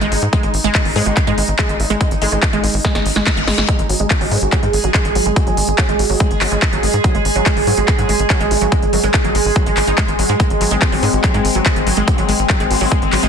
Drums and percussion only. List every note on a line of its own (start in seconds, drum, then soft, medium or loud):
0.01 closed hi-hat medium
0.12 open hi-hat loud
0.22 closed hi-hat medium
0.33 kick loud
0.33 closed hi-hat medium
0.43 closed hi-hat medium
0.54 open hi-hat loud
0.64 closed hi-hat medium
0.75 kick loud
0.75 clap loud
0.75 closed hi-hat medium
0.85 open hi-hat medium
0.96 open hi-hat loud
1.06 closed hi-hat medium
1.17 kick loud
1.17 clap medium
1.17 closed hi-hat medium
1.27 closed hi-hat medium
1.38 open hi-hat loud
1.48 closed hi-hat medium
1.59 kick loud
1.59 clap loud
1.59 closed hi-hat medium
1.69 closed hi-hat medium
1.80 open hi-hat loud
1.90 closed hi-hat medium
2.01 kick loud
2.01 closed hi-hat medium
2.11 closed hi-hat medium
2.22 open hi-hat loud
2.32 closed hi-hat medium
2.43 kick loud
2.43 clap loud
2.43 closed hi-hat medium
2.53 closed hi-hat medium
2.64 open hi-hat loud
2.74 open hi-hat medium
2.85 kick loud
2.85 snare medium
2.95 snare medium
2.95 closed hi-hat medium
3.06 open hi-hat loud
3.16 snare medium
3.27 kick loud
3.27 snare medium
3.27 clap loud
3.27 closed hi-hat medium
3.37 closed hi-hat medium
3.48 snare medium
3.48 open hi-hat loud
3.58 snare medium
3.68 kick loud
3.68 closed hi-hat medium
3.79 closed hi-hat medium
3.89 open hi-hat loud
4.00 closed hi-hat medium
4.10 kick loud
4.10 clap loud
4.10 closed hi-hat medium
4.21 open hi-hat medium
4.31 open hi-hat loud
4.42 closed hi-hat medium
4.52 kick loud
4.52 clap medium
4.52 closed hi-hat medium
4.63 closed hi-hat medium
4.73 open hi-hat loud
4.84 closed hi-hat medium
4.94 kick loud
4.94 clap loud
4.94 closed hi-hat medium
5.05 closed hi-hat medium
5.15 open hi-hat loud
5.26 closed hi-hat medium
5.36 kick loud
5.36 closed hi-hat medium
5.47 closed hi-hat medium
5.57 open hi-hat loud
5.68 closed hi-hat medium
5.78 kick loud
5.78 clap loud
5.78 closed hi-hat medium
5.89 closed hi-hat medium
5.99 open hi-hat loud
6.10 open hi-hat medium
6.20 kick loud
6.20 closed hi-hat medium
6.31 closed hi-hat medium
6.41 clap medium
6.41 open hi-hat loud
6.52 closed hi-hat medium
6.62 kick loud
6.62 clap loud
6.62 closed hi-hat medium
6.73 closed hi-hat medium
6.83 open hi-hat loud
6.94 closed hi-hat medium
7.04 kick loud
7.04 closed hi-hat medium
7.15 closed hi-hat medium
7.25 open hi-hat loud
7.36 closed hi-hat medium
7.46 kick loud
7.46 clap loud
7.46 closed hi-hat medium
7.57 open hi-hat medium
7.67 open hi-hat loud
7.78 closed hi-hat medium
7.88 kick loud
7.88 clap medium
7.88 closed hi-hat medium
7.99 closed hi-hat medium
8.09 open hi-hat loud
8.20 closed hi-hat medium
8.30 kick loud
8.30 clap loud
8.30 closed hi-hat medium
8.41 closed hi-hat medium
8.51 open hi-hat loud
8.62 closed hi-hat medium
8.72 kick loud
8.72 closed hi-hat medium
8.82 closed hi-hat medium
8.93 open hi-hat loud
9.03 closed hi-hat medium
9.14 kick loud
9.14 clap loud
9.14 closed hi-hat medium
9.24 closed hi-hat soft
9.35 open hi-hat loud
9.45 open hi-hat medium
9.56 kick loud
9.66 closed hi-hat medium
9.77 clap medium
9.77 open hi-hat loud
9.87 closed hi-hat medium
9.98 kick loud
9.98 clap loud
9.98 closed hi-hat medium
10.08 closed hi-hat medium
10.19 open hi-hat loud
10.29 closed hi-hat medium
10.40 kick loud
10.40 closed hi-hat medium
10.50 closed hi-hat soft
10.61 open hi-hat loud
10.71 closed hi-hat soft
10.82 kick loud
10.82 clap loud
10.82 closed hi-hat medium
10.92 open hi-hat medium
11.03 open hi-hat loud
11.13 closed hi-hat medium
11.24 kick loud
11.24 clap medium
11.24 closed hi-hat medium
11.34 closed hi-hat medium
11.45 open hi-hat loud
11.55 closed hi-hat medium
11.66 kick loud
11.66 clap loud
11.66 closed hi-hat medium
11.76 closed hi-hat medium
11.87 open hi-hat loud
11.97 closed hi-hat medium
12.08 kick loud
12.08 closed hi-hat medium
12.18 closed hi-hat medium
12.29 open hi-hat loud
12.39 closed hi-hat medium
12.50 kick loud
12.50 clap loud
12.50 closed hi-hat medium
12.60 closed hi-hat medium
12.71 open hi-hat loud
12.81 open hi-hat medium
12.92 kick loud
13.02 closed hi-hat medium
13.13 clap medium
13.13 open hi-hat loud
13.23 closed hi-hat medium